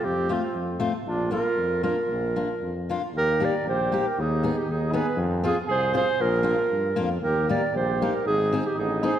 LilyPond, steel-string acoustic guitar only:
\new Staff \with { instrumentName = "Steel-string acoustic guitar" } { \time 2/4 \key bes \major \tempo 4 = 117 r8 <a c' f'>8 r8 <a c' f'>8 | r8 <bes d' f'>8 r8 <bes d' f'>8 | r8 <bes d' f'>8 r8 <bes d' f'>8 | \key ees \major r8 <bes ees' g'>8 r8 <bes ees' g'>8 |
r8 <ces' ees' aes'>8 r8 <ces' ees' aes'>8 | r8 <c' f' aes'>8 r8 <c' f' aes'>8 | r8 <bes d' f'>8 r8 <bes d' f'>8 | r8 <bes ees' g'>8 r8 <bes ees' g'>8 |
r8 <c' ees' aes'>8 r8 <c' ees' aes'>8 | }